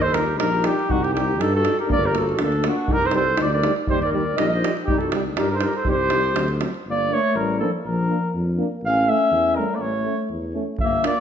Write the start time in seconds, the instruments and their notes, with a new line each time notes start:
Already playing: tuba D#2
0.02 clarinet A4, flugelhorn C5, davul high
0.14 euphonium G3, french horn D#4, clarinet G4, flugelhorn A#4, davul high
0.39 tuba A#1, euphonium G3, french horn D#4, clarinet G4, flugelhorn A#4, davul high
0.63 euphonium G3, french horn D#4, clarinet D#4, flugelhorn G4, davul high
0.79 davul high
0.88 tuba C2, euphonium G3, french horn D#4, clarinet D#4, flugelhorn F#4, davul low
1.03 clarinet D#4, flugelhorn G4, davul high
1.12 euphonium G3, french horn D#4, clarinet D#4, flugelhorn G4
1.17 davul high
1.37 tuba G2, euphonium G3, french horn D#4, clarinet D#4, flugelhorn A4, davul high
1.54 clarinet F#4, flugelhorn A4
1.63 euphonium G3, french horn D#4, davul high
1.79 clarinet G4, flugelhorn A#4, davul high
1.87 euphonium A#3, french horn D4, davul low
1.91 tuba G1, clarinet A#4, flugelhorn D5
2.04 clarinet G4, flugelhorn A#4, davul high
2.13 euphonium A#3, french horn D4, clarinet F#4, davul high
2.18 flugelhorn A4
2.29 davul high
2.38 tuba D2, euphonium A#3, french horn D4, davul high
2.44 clarinet D4, flugelhorn A4
2.52 davul high
2.62 euphonium A#3, french horn D4, clarinet D4, davul high
2.69 flugelhorn F#4
2.87 tuba C2, euphonium G3, french horn D#4, davul low
2.92 clarinet G4, flugelhorn A#4
3.02 davul high
3.06 clarinet A4, flugelhorn C5
3.11 euphonium G3, french horn D#4, davul high
3.16 clarinet A4, flugelhorn C5
3.37 tuba D2, euphonium G3, french horn D#4, clarinet G4, davul high
3.42 flugelhorn D5
3.53 clarinet A#4, flugelhorn D5
3.62 euphonium G3, french horn D#4, davul high
3.76 davul high
3.87 tuba D#2, euphonium G3, french horn D#4, flugelhorn C5, davul low
3.92 clarinet G4
4.02 clarinet A#4, flugelhorn D5, davul high
4.12 euphonium G3, french horn D#4, flugelhorn D5
4.16 clarinet A#4
4.36 tuba A#1, euphonium G3, french horn D#4, clarinet A#4, flugelhorn D#5, davul high
4.48 flugelhorn D#5
4.55 clarinet C5
4.59 french horn D#4
4.64 euphonium G3, davul high
4.77 davul high
4.85 tuba C2, french horn D#4, flugelhorn G4, davul low
4.89 euphonium G3, clarinet D#4
4.99 flugelhorn A4, davul high
5.05 clarinet F#4
5.09 french horn D#4, davul high
5.13 euphonium G3
5.36 tuba G2, euphonium G3, french horn D#4, clarinet G4, flugelhorn A#4, davul high
5.51 clarinet G4, flugelhorn A#4 C5
5.56 clarinet A4
5.60 euphonium G3, french horn D#4, clarinet G4, flugelhorn A#4, davul high
5.74 clarinet A4, flugelhorn C5, davul high
5.84 tuba C2, euphonium G3, french horn D#4, clarinet G4, davul low
5.90 flugelhorn C5
6.10 euphonium G3, french horn D#4, davul high
6.24 davul high
6.34 tuba D2, euphonium F#3, french horn C4, davul high
6.48 davul high
6.59 euphonium F#3, french horn C4, davul high
6.74 davul high
6.85 tuba G1, clarinet A#3
6.90 flugelhorn D5
7.08 euphonium A#3, french horn D4
7.14 clarinet A3, flugelhorn C#5
7.35 tuba A1, clarinet G3, flugelhorn A#4
7.58 clarinet F3, euphonium A#3, french horn D4, flugelhorn A4
7.84 tuba A#1, clarinet F3, flugelhorn A#4
8.07 euphonium A#3, french horn D4
8.34 tuba F2
8.57 euphonium A#3, french horn D4
8.83 tuba A1, flugelhorn F5
8.87 clarinet C#4
9.05 euphonium A3, french horn C#4, flugelhorn E5
9.10 clarinet C#4
9.31 tuba E2
9.56 clarinet G3, euphonium A3, french horn C#4, flugelhorn A#4
9.75 clarinet A#3, flugelhorn D5
9.79 tuba A1, clarinet A3, flugelhorn C#5
10.04 euphonium A3, french horn C#4
10.30 tuba E2
10.54 euphonium A3, french horn C#4
10.78 tuba G1, flugelhorn E5, davul low
10.83 clarinet A#3
11.03 euphonium A#3, french horn D4, flugelhorn D5, davul high
11.07 clarinet A#3